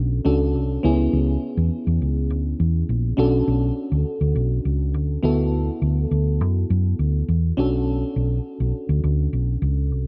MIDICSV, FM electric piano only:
0, 0, Header, 1, 2, 480
1, 0, Start_track
1, 0, Tempo, 585366
1, 688, Time_signature, 4, 2, 24, 8
1, 8259, End_track
2, 0, Start_track
2, 0, Title_t, "FM electric piano"
2, 0, Program_c, 0, 5
2, 0, Control_c, 0, 64, 127
2, 0, Note_on_c, 0, 61, 64
2, 0, Note_on_c, 0, 62, 61
2, 0, Note_on_c, 0, 66, 58
2, 0, Note_on_c, 0, 69, 67
2, 171, Note_off_c, 0, 61, 0
2, 175, Note_off_c, 0, 62, 0
2, 178, Note_off_c, 0, 66, 0
2, 182, Note_off_c, 0, 69, 0
2, 202, Note_on_c, 0, 61, 55
2, 206, Note_on_c, 0, 62, 49
2, 210, Note_on_c, 0, 66, 50
2, 213, Note_on_c, 0, 69, 58
2, 679, Note_off_c, 0, 61, 0
2, 682, Note_on_c, 0, 59, 68
2, 687, Note_off_c, 0, 62, 0
2, 688, Note_on_c, 0, 61, 57
2, 690, Note_off_c, 0, 66, 0
2, 691, Note_off_c, 0, 69, 0
2, 694, Note_on_c, 0, 64, 62
2, 700, Control_c, 0, 64, 0
2, 700, Note_on_c, 0, 68, 65
2, 859, Control_c, 0, 64, 127
2, 2574, Note_off_c, 0, 59, 0
2, 2578, Note_off_c, 0, 61, 0
2, 2581, Note_off_c, 0, 64, 0
2, 2584, Note_off_c, 0, 68, 0
2, 2599, Note_on_c, 0, 61, 68
2, 2606, Note_on_c, 0, 62, 55
2, 2613, Note_on_c, 0, 66, 59
2, 2620, Note_on_c, 0, 69, 74
2, 2622, Control_c, 0, 64, 0
2, 2755, Control_c, 0, 64, 127
2, 4253, Note_off_c, 0, 61, 0
2, 4257, Note_off_c, 0, 62, 0
2, 4260, Note_off_c, 0, 66, 0
2, 4264, Note_off_c, 0, 69, 0
2, 4285, Note_on_c, 0, 59, 62
2, 4292, Note_on_c, 0, 64, 53
2, 4298, Note_on_c, 0, 66, 52
2, 4301, Control_c, 0, 64, 0
2, 4305, Note_on_c, 0, 69, 70
2, 4436, Control_c, 0, 64, 127
2, 6175, Note_off_c, 0, 59, 0
2, 6178, Note_off_c, 0, 64, 0
2, 6181, Note_off_c, 0, 66, 0
2, 6185, Note_off_c, 0, 69, 0
2, 6209, Note_on_c, 0, 61, 69
2, 6216, Note_on_c, 0, 62, 58
2, 6220, Control_c, 0, 64, 0
2, 6223, Note_on_c, 0, 66, 57
2, 6231, Note_on_c, 0, 69, 66
2, 6366, Control_c, 0, 64, 127
2, 8094, Note_off_c, 0, 61, 0
2, 8098, Note_off_c, 0, 62, 0
2, 8102, Note_off_c, 0, 66, 0
2, 8105, Note_off_c, 0, 69, 0
2, 8259, End_track
0, 0, End_of_file